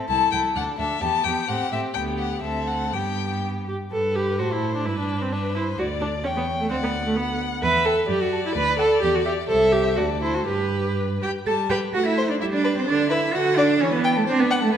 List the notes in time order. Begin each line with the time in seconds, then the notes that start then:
0.09 C2 E4 A4 A5
0.31 C2 E4 A4 G5
0.56 D2 D4 A4 F#5
0.78 D2 D4 A4 E5
1.01 E2 B3 G4 A5
1.24 E2 B3 G4 G5
1.48 A2 C4 G4 F#5
1.72 A2 C4 G4 E5
1.94 D2 B3 G4 G5
2.18 F#5
2.42 D2 C4 A4 E5
2.67 F#5
2.93 G2 B3 G4 G5
3.68 G4
3.92 G2 A4 B4
4.16 G4
4.39 A2 F#4 A4 C5
4.52 E4
4.75 D4
4.86 G2 E4 B4
4.98 D4
5.22 C4
5.33 D4 B4
5.56 E4 C5
5.78 D2 F#4 D5
6.01 D4
6.24 E2 C#4 C#5 G5
6.37 B3
6.60 A3
6.70 D2 C4 D5 F#5
6.83 B3
7.06 A3
7.17 B3 F#5
7.63 E2 B4 E5
7.85 A4 G5
8.09 F#2 G4 D5
8.22 F#4
8.33 A5
8.45 E4
8.55 D2 B4
8.79 A4 F#5
9.02 E2 G4
9.15 F#4
9.25 G4 E5
9.48 C2 A4 C5 E5
9.72 G4
9.96 D2 F#4 A4 D5
10.21 E4 C5
10.34 F#4
10.46 G2 G4 B4
11.22 G4 G5
11.46 G3 A4 A5
11.70 G4 B4 G5
11.93 A3 F#4 F#5
12.06 E4 E5
12.18 C5
12.30 D4 D5
12.40 G3 E4 E5
12.53 D4 D5
12.64 B4
12.76 C4 C5
12.87 D3 D4 D5
13.10 E4 B4 E5
13.34 D3 F#4 F#5
13.57 D4 D5
13.80 E3 C#4 C#5
13.92 B3 B4
14.04 G5
14.15 A3 A4
14.26 C4 D4 C5
14.38 B3 B4
14.51 F#5
14.61 A3 A4
14.71 A3 B3 B4